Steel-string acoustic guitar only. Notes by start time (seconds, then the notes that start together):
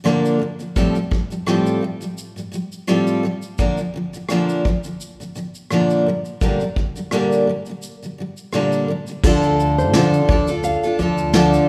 0.04 A#2 D3 F3 A#3 D4 A#4
0.39 A#2 D3
0.59 A#2 D3 F3
0.76 A2 F3 G3 C4 F4 A4
0.95 A2 F3 G3
1.11 A2 F3 G3
1.30 A2 F3 G3
1.46 A2 F3 G3 C4 F4 A4
1.81 A2 F3 G3
2.01 A2 F3 G3
2.36 A2 F3 G3
2.52 A2 F3 G3
2.87 A2 F3 G3 C4 F4 A4
3.23 A2 F3 G3
3.58 A#2 D3 F3 A#3 D4 A#4
3.77 A#2 D3 F3
3.94 A#2 D3 F3
4.13 A#2 D3 F3
4.29 A#2 D3 F3 A#3 D4 A#4
4.65 A#2 D3 F3
4.84 A#2 D3 F3
5.20 A#2 D3 F3
5.35 A#2 D3 F3
5.71 A#2 D3 F3 A#3 D4 A#4
6.07 A#2 D3 G3
6.41 A#2 D3 G3 A#3 D4 A#4
6.61 A#2 D3 G3
6.76 A#2 D3 G3
6.96 A#2 D3 G3
7.12 A#2 D3 G3 A#3 D4 A#4
7.47 A#2 D3 G3
7.67 A#2 D3 G3
8.03 A#2 D3 G3
8.18 A#2 D3 G3
8.54 A#2 D3 G3 A#3 D4 A#4
8.88 A#2 D3 G3
9.08 A#2 D3 G3
9.24 D3 F3 D4 F4 A4
9.94 D3 F3 D4 F4 A4
10.28 F3 D4 F4 A4
10.48 D4 F4 A4
10.83 D4 F4 A4
10.99 F3 D4 F4 A4
11.34 D3 F3 D4 F4 A4